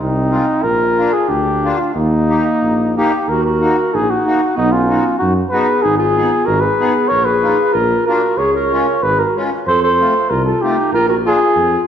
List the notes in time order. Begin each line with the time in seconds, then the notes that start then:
Already playing: D#4
0.00 C2 C4
0.31 G#3 C4 F4
0.63 A#1 F4 A#4
0.98 A#3 D4 F4
1.13 F4 G#4
1.28 D2 D4 G4
1.63 A#3 D4 F4
1.78 D4 F4
1.94 D#2 A#3 D#4
2.29 A#3 D#4 G4
2.62 A#1
2.96 A#3 D#4 G4
3.28 D#2 F#4 A#4
3.45 F#4 A#4
3.61 A#3 D#4 F#4
3.93 A#1 D#4 G#4
4.09 D#4 F#4
4.25 A#3 D#4 F#4
4.55 B1 B3 D#4
4.72 C#4 F4
4.89 B3 D#4 F#4
5.19 F#2 D#4 F#4
5.50 B3 D#4 F#4 G#4 B4
5.82 G#1 D#4 G#4
5.98 F4 G#4
6.17 B3 D#4 G#4
6.44 G#1 F#4 A#4
6.61 G#4 B4
6.79 B3 D#4 G#4
7.08 A#1 A#4 C#5
7.25 G#4 B4
7.42 A#3 D#4 F4
7.73 A#1 F4 A#4
8.06 A#3 D4 F4 F#4 A#4
8.38 C#2 G#4 C#5
8.54 A#4 C#5
8.71 G#3 C#4 F4
9.02 G#1 G#4 B4
9.20 F#4 A#4
9.36 G#3 C#4 F4
9.67 F2 A4 C5
9.83 A4 C5
9.99 A3 C4 F4
10.30 C2 F4 A#4
10.45 F4 A4
10.62 A3 C4 D#4 F4 G4
10.93 A#1 F4 A#4
11.09 F#4 A#4
11.25 A#3 D4 F4 G#4
11.56 F2